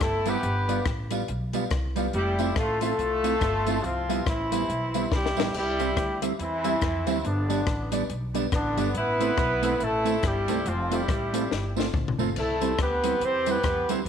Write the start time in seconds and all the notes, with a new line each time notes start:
0.00 G1 A3 E4 A4 C5 E5, kick, cross-stick, closed hi-hat
0.26 G3 B3 E4 G4 B4 C5 E5, closed hi-hat, tambourine
0.43 G1, closed hi-hat
0.68 G3 B3 F4 G4 B4 D5 F5, closed hi-hat, tambourine
0.86 A1, muted clean electric guitar stroke, kick, cross-stick, closed hi-hat
1.11 G3 B3 F4 G4 B4 D5 F5, closed hi-hat, tambourine
1.28 B1, closed hi-hat
1.53 G3 B3 F4 G4 B4 D5 F5, closed hi-hat, tambourine
1.70 C2, kick, cross-stick, closed hi-hat
1.96 G3 B3 F4 G4 B4 D5 F5, closed hi-hat, tambourine
2.13 F1 G3 E4 G4, closed hi-hat
2.38 A3 C4 E4 F4 A4 C5 E5, closed hi-hat, tambourine
2.56 A1 A3 F4 A4, muted clean electric guitar stroke, kick, cross-stick, closed hi-hat
2.81 A3 C4 E4 F4 A4 C5 E5, closed hi-hat, tambourine
2.98 C2, closed hi-hat
3.23 A3 C4 E4 F4 A4 C5 E5, closed hi-hat, tambourine
3.41 G1, kick, cross-stick, closed hi-hat
3.66 A3 C4 E4 F4 A4 C5 E5, closed hi-hat, tambourine
3.83 C2 F3 C4 F4, closed hi-hat
4.08 G3 B3 E4 G4 B4 C5 E5, closed hi-hat, tambourine
4.26 A1 E3 C4 E4, muted clean electric guitar stroke, kick, cross-stick, closed hi-hat
4.51 G3 B3 E4 G4 B4 C5 E5, closed hi-hat, tambourine
4.69 B1, closed hi-hat
4.94 G3 B3 E4 G4 B4 C5 E5, closed hi-hat, tambourine
5.12 C2 G3 E4 G4, kick, snare
5.26 snare
5.36 A1 G3 B3 E4 G4 B4 C5 E5, snare, tambourine
5.54 C2 G3 E4 G4, crash
5.79 G3 C4 E4 G4 C5 E5, closed hi-hat, tambourine
5.97 D2, muted clean electric guitar stroke, kick, cross-stick, closed hi-hat
6.21 G3 C4 E4 G4 C5 E5, closed hi-hat, tambourine
6.39 E2 E3 C4 E4, closed hi-hat
6.64 G3 C4 E4 G4 C5 E5, closed hi-hat, tambourine
6.81 F2, kick, cross-stick, closed hi-hat
7.06 D2 G3 C4 E4 G4 C5 E5, closed hi-hat, tambourine
7.24 G1 D3 B3 D4, closed hi-hat
7.48 G3 B3 D4 G4 B4 D5, closed hi-hat, tambourine
7.66 A1, muted clean electric guitar stroke, kick, cross-stick, closed hi-hat
7.92 G3 B3 D4 G4 B4 D5, closed hi-hat, tambourine
8.10 B1, closed hi-hat
8.34 G3 B3 D4 G4 B4 D5, closed hi-hat, tambourine
8.52 A1 D3 B3 D4, kick, cross-stick, closed hi-hat
8.77 G1 G3 B3 D4 G4 B4 D5, closed hi-hat, tambourine
8.94 A1 B3 E4 B4, closed hi-hat
9.20 A3 C4 E4 A4 C5, closed hi-hat, tambourine
9.37 B1, muted clean electric guitar stroke, kick, cross-stick, closed hi-hat
9.62 A3 C4 E4 A4 C5, closed hi-hat, tambourine
9.80 A1 A3 E4 A4, closed hi-hat
10.05 A3 C4 E4 A4 C5, closed hi-hat, tambourine
10.23 G1 G3 E4 G4, kick, cross-stick, closed hi-hat
10.48 C2 A3 C4 E4 A4 C5, closed hi-hat, tambourine
10.66 F1 F3 C4 F4, closed hi-hat
10.91 G3 A3 C4 E4 F4 G4 A4 C5, closed hi-hat, tambourine
11.08 A1, muted clean electric guitar stroke, kick, cross-stick, closed hi-hat
11.33 A3 C4 F4 A4 C5, closed hi-hat, tambourine
11.51 G1, snare
11.76 A3 C4 F4 A4 C5, snare, tambourine
11.94 A1, kick, mid tom
12.08 floor tom
12.19 G1 A3 C4 F4 A4 C5, tambourine
12.36 C2 A3 E4 A4, crash
12.61 G3 C4 E4 G4 C5, closed hi-hat, tambourine
12.78 D2 B3 G4 B4, muted clean electric guitar stroke, kick, cross-stick, closed hi-hat
13.03 G3 C4 E4 G4 C5, closed hi-hat, tambourine
13.20 E2 G4, closed hi-hat
13.24 C4 C5
13.46 G3 C4 E4 G4 C5, closed hi-hat, tambourine
13.50 B3 B4
13.63 F2, kick, cross-stick, closed hi-hat
13.88 D2 G3 C4 E4 G4 C5, closed hi-hat, tambourine
14.05 G1